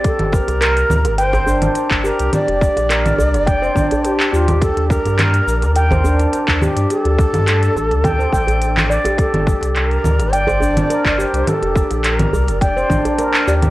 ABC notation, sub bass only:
X:1
M:4/4
L:1/16
Q:1/4=105
K:Gm
V:1 name="Sub bass" clef=bass
z G,,, z C,,3 D,, G,,,4- G,,, z G,,, z C,, | z F,,, z B,,,3 C,, F,,,3 A,,, z3 E,,2- | E,, E,, z G,,3 B,,, E,,4- E,, z E,, z G,, | z D,, z G,,3 A,,, D,,3 A,,,4- A,,, z |
z G,,, z C,,3 D,, G,,,4- G,,, z G,,, z C,, | z F,,, z B,,,3 C,, F,,,3 A,,, z3 E,,2 |]